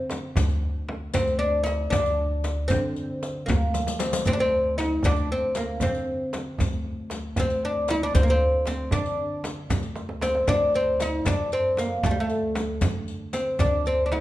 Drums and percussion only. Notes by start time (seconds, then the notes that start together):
0.10 riq, tombak tek, frame drum
0.36 riq, tombak dum, frame drum
0.49 riq, tombak ka
0.63 tombak ka
0.89 tombak tek, frame drum
1.14 riq, tombak dum, frame drum
1.27 riq, tombak ka
1.41 tombak ka
1.66 riq, tombak tek
1.92 riq, tombak dum, frame drum
2.06 riq, tombak ka
2.19 tombak ka
2.44 riq, tombak tek, frame drum
2.70 riq, tombak dum, frame drum
2.96 riq, tombak ka
3.23 riq, tombak tek
3.48 riq, tombak dum, frame drum
3.61 tombak ka
3.74 riq, tombak tek
3.87 riq, tombak ka
3.99 riq, tombak tek, frame drum
4.13 riq, tombak ka
4.25 riq, tombak dum, frame drum
4.39 riq, tombak ka
4.52 tombak ka
4.79 riq, frame drum
5.03 riq, tombak dum, frame drum
5.15 riq, tombak ka
5.30 tombak ka
5.55 riq, tombak tek, frame drum
5.80 riq, tombak dum, frame drum
5.94 riq, tombak ka
6.08 tombak ka
6.33 riq, tombak tek, frame drum
6.58 riq, tombak dum, frame drum
6.72 riq, tombak ka
6.84 tombak ka
7.10 riq, tombak tek, frame drum
7.36 riq, tombak dum, frame drum
7.49 riq, tombak ka
7.63 tombak ka
7.88 riq, tombak tek, frame drum
8.14 riq, tombak dum, frame drum
8.27 riq, tombak ka
8.40 tombak ka
8.66 riq, tombak tek, frame drum
8.91 riq, tombak dum, frame drum
9.04 riq, tombak ka
9.17 tombak ka
9.44 riq, tombak tek, frame drum
9.70 riq, tombak dum, frame drum
9.82 riq, tombak ka
9.96 riq, tombak tek
10.09 tombak ka
10.21 riq, tombak tek, frame drum
10.35 tombak ka
10.48 riq, frame drum, tombak dum
10.74 riq, tombak ka
11.00 riq, tombak tek, frame drum
11.25 riq, tombak dum, frame drum
11.52 riq
11.77 riq, tombak tek, frame drum
12.03 riq, frame drum, tombak dum
12.30 riq, tombak ka
12.55 riq, tombak tek, frame drum
12.81 riq, frame drum, tombak dum
13.08 riq
13.33 riq, tombak tek, frame drum
13.59 riq, frame drum, tombak dum
13.85 riq, tombak ka
14.12 tombak tek, frame drum